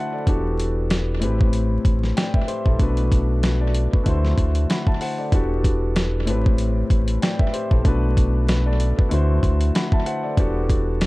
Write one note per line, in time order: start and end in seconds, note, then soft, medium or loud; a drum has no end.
0.00 0.23 D3 medium
0.00 0.24 A3 medium
0.00 0.25 E4 medium
0.00 0.25 F#4 medium
0.00 0.29 C5 medium
0.00 0.29 E5 medium
0.00 0.29 F#5 medium
0.00 0.29 A5 medium
0.00 0.29 B5 medium
0.13 0.27 A4 medium
0.13 0.43 D5 medium
0.26 1.24 E1 loud
0.26 1.22 E3 medium
0.26 1.22 B3 medium
0.26 1.22 D4 medium
0.26 1.22 F#4 medium
0.26 1.21 G4 medium
0.26 1.23 A4 medium
0.26 kick loud
0.26 closed hi-hat medium
0.60 closed hi-hat medium
0.90 snare loud
0.90 closed hi-hat medium
1.19 1.79 A1 loud
1.19 2.75 A2 medium
1.19 2.76 A3 medium
1.19 2.77 C4 medium
1.19 2.15 G4 medium
1.19 closed hi-hat medium
1.24 2.16 B4 medium
1.41 kick loud
1.53 closed hi-hat medium
1.85 2.13 A1 medium
1.85 kick loud
1.85 closed hi-hat medium
2.03 snare soft
2.17 2.34 D5 medium
2.17 2.33 G5 medium
2.17 snare loud
2.17 closed hi-hat medium
2.34 2.48 B4 medium
2.34 2.48 E5 medium
2.34 kick loud
2.48 2.65 G4 medium
2.48 2.65 C5 medium
2.48 closed hi-hat medium
2.65 2.78 A#1 medium
2.65 2.96 E4 medium
2.65 2.95 A4 medium
2.65 kick medium
2.78 3.88 B1 loud
2.78 4.02 B2 medium
2.78 4.03 A3 medium
2.78 4.04 D4 medium
2.78 3.42 F#4 medium
2.78 kick loud
2.78 closed hi-hat medium
2.82 3.41 B4 medium
2.97 closed hi-hat soft
3.12 kick medium
3.12 closed hi-hat medium
3.43 3.60 F#4 medium
3.43 3.59 B4 medium
3.43 snare loud
3.43 closed hi-hat medium
3.60 3.91 A4 medium
3.60 3.90 D5 medium
3.74 closed hi-hat medium
3.92 4.05 F#4 medium
3.92 4.22 B4 medium
3.92 kick loud
4.04 4.34 D2 loud
4.04 5.29 D3 medium
4.04 5.29 A3 medium
4.04 5.30 E4 medium
4.04 5.30 F#4 medium
4.04 kick medium
4.04 closed hi-hat medium
4.08 4.38 C5 medium
4.25 snare soft
4.38 4.66 D2 medium
4.38 kick medium
4.38 closed hi-hat medium
4.55 closed hi-hat medium
4.70 4.86 F#5 medium
4.70 4.86 B5 medium
4.70 snare loud
4.70 closed hi-hat medium
4.87 5.01 E5 medium
4.87 5.00 A5 medium
4.87 kick loud
5.01 5.18 C5 medium
5.01 5.18 F#5 medium
5.01 open hi-hat soft
5.18 5.33 A4 medium
5.18 5.48 D5 medium
5.32 6.29 E1 loud
5.32 6.27 E3 medium
5.32 6.27 B3 medium
5.32 6.27 D4 medium
5.32 6.28 F#4 medium
5.32 6.27 G4 medium
5.32 6.28 A4 medium
5.32 kick loud
5.32 closed hi-hat medium
5.64 kick loud
5.64 closed hi-hat loud
5.96 snare loud
5.96 closed hi-hat medium
6.25 6.84 A1 loud
6.25 7.81 A2 medium
6.25 7.81 A3 medium
6.25 7.82 C4 medium
6.25 7.21 G4 medium
6.25 closed hi-hat medium
6.30 7.21 B4 medium
6.46 kick loud
6.58 closed hi-hat medium
6.90 7.19 A1 medium
6.90 kick medium
6.90 closed hi-hat medium
7.08 closed hi-hat medium
7.22 7.39 D5 medium
7.22 7.39 G5 medium
7.22 snare loud
7.22 closed hi-hat medium
7.39 7.53 B4 medium
7.39 7.53 E5 medium
7.39 kick loud
7.53 7.70 G4 medium
7.53 7.70 C5 medium
7.53 closed hi-hat medium
7.70 7.84 A#1 loud
7.70 8.01 E4 medium
7.70 8.01 A4 medium
7.70 kick medium
7.83 8.93 B1 loud
7.83 9.08 B2 medium
7.83 9.08 A3 medium
7.83 9.09 D4 medium
7.83 8.47 F#4 medium
7.83 kick loud
7.83 closed hi-hat medium
7.88 8.47 B4 medium
8.17 kick loud
8.17 closed hi-hat medium
8.48 8.65 F#4 medium
8.48 8.65 B4 medium
8.48 snare loud
8.48 closed hi-hat medium
8.66 8.96 A4 medium
8.66 8.96 D5 medium
8.80 closed hi-hat medium
8.97 9.11 F#4 medium
8.97 9.27 B4 medium
8.97 kick loud
9.09 9.40 D2 loud
9.09 10.34 D3 medium
9.09 10.34 A3 medium
9.09 10.35 E4 medium
9.09 10.36 F#4 medium
9.09 closed hi-hat medium
9.14 9.43 C5 medium
9.43 9.71 D2 loud
9.43 kick medium
9.43 closed hi-hat medium
9.61 closed hi-hat medium
9.75 9.92 F#5 medium
9.75 9.91 B5 medium
9.75 snare loud
9.75 closed hi-hat medium
9.92 10.06 E5 medium
9.92 10.05 A5 medium
9.92 kick loud
10.06 10.23 C5 medium
10.06 10.23 F#5 medium
10.06 closed hi-hat medium
10.24 10.38 A4 medium
10.24 10.54 D5 medium
10.37 11.06 E1 loud
10.37 11.06 E3 medium
10.37 11.06 B3 medium
10.37 11.06 D4 medium
10.37 11.06 F#4 medium
10.37 11.06 G4 medium
10.37 11.06 A4 medium
10.37 kick loud
10.37 closed hi-hat medium
10.70 kick loud
10.70 closed hi-hat medium
11.01 snare loud
11.01 closed hi-hat medium